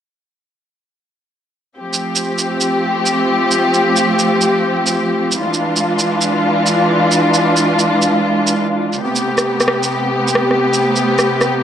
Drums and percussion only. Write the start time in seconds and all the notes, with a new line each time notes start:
1.93 shaker
2.16 shaker
2.39 shaker
2.61 shaker
3.06 shaker
3.51 shaker
3.74 shaker
3.97 shaker
4.19 shaker
4.41 shaker
4.87 shaker
5.32 shaker
5.54 shaker
5.76 shaker
5.99 shaker
6.21 shaker
6.67 shaker
7.12 shaker
7.34 shaker
7.57 shaker
7.79 shaker
8.02 shaker
8.47 shaker
8.93 shaker
9.16 shaker
9.38 cross-stick, shaker
9.60 cross-stick, shaker
9.68 cross-stick
9.83 shaker
10.28 shaker
10.35 cross-stick
10.51 cross-stick
10.74 shaker
10.96 shaker
11.19 cross-stick, shaker
11.41 cross-stick, shaker